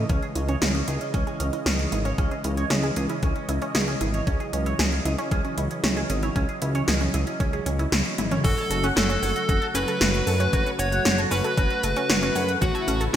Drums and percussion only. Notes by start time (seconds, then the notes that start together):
0.09 kick, closed hi-hat
0.22 closed hi-hat
0.35 closed hi-hat
0.48 closed hi-hat
0.62 snare, closed hi-hat
0.75 closed hi-hat
0.88 closed hi-hat
1.01 closed hi-hat
1.14 kick, closed hi-hat
1.27 closed hi-hat
1.40 closed hi-hat
1.53 closed hi-hat
1.66 snare, closed hi-hat
1.79 closed hi-hat
1.92 closed hi-hat
2.05 closed hi-hat
2.18 kick, closed hi-hat
2.31 closed hi-hat
2.44 closed hi-hat
2.57 closed hi-hat
2.70 snare, closed hi-hat
2.83 closed hi-hat
2.96 closed hi-hat
3.09 closed hi-hat
3.23 kick, closed hi-hat
3.36 closed hi-hat
3.49 closed hi-hat
3.62 closed hi-hat
3.75 snare, closed hi-hat
3.88 closed hi-hat
4.01 closed hi-hat
4.14 closed hi-hat
4.27 kick, closed hi-hat
4.40 closed hi-hat
4.53 closed hi-hat
4.66 closed hi-hat
4.79 snare, closed hi-hat
4.92 closed hi-hat
5.05 closed hi-hat
5.18 closed hi-hat
5.31 kick, closed hi-hat
5.45 closed hi-hat
5.58 closed hi-hat
5.71 closed hi-hat
5.84 snare, closed hi-hat
5.97 closed hi-hat
6.10 closed hi-hat
6.23 closed hi-hat
6.36 kick, closed hi-hat
6.49 closed hi-hat
6.62 closed hi-hat
6.75 closed hi-hat
6.88 snare, closed hi-hat
7.01 closed hi-hat
7.14 closed hi-hat
7.27 closed hi-hat
7.40 kick, closed hi-hat
7.53 closed hi-hat
7.66 closed hi-hat
7.79 closed hi-hat
7.92 snare, closed hi-hat
8.05 closed hi-hat
8.18 closed hi-hat, high tom
8.31 closed hi-hat, mid tom
8.44 kick, closed hi-hat, crash, shaker
8.58 closed hi-hat, shaker
8.71 closed hi-hat, shaker
8.84 closed hi-hat, shaker
8.97 snare, closed hi-hat, shaker
9.10 closed hi-hat, shaker
9.23 open hi-hat, shaker
9.36 closed hi-hat, shaker
9.49 kick, closed hi-hat, shaker
9.62 closed hi-hat
9.75 closed hi-hat, shaker
9.88 closed hi-hat, shaker
10.01 snare, closed hi-hat, shaker
10.14 closed hi-hat, shaker
10.27 open hi-hat, shaker
10.40 closed hi-hat, shaker
10.53 kick, closed hi-hat, shaker
10.66 closed hi-hat, shaker
10.79 closed hi-hat, shaker
10.92 closed hi-hat, shaker
11.05 snare, closed hi-hat, shaker
11.18 closed hi-hat, shaker
11.31 open hi-hat, shaker
11.44 closed hi-hat, shaker
11.57 kick, closed hi-hat, shaker
11.70 closed hi-hat
11.83 closed hi-hat, shaker
11.96 closed hi-hat, shaker
12.10 snare, closed hi-hat, shaker
12.22 closed hi-hat, shaker
12.36 open hi-hat, shaker
12.49 closed hi-hat, shaker
12.62 kick, closed hi-hat, shaker
12.75 closed hi-hat, shaker
12.88 closed hi-hat, shaker
13.01 closed hi-hat, shaker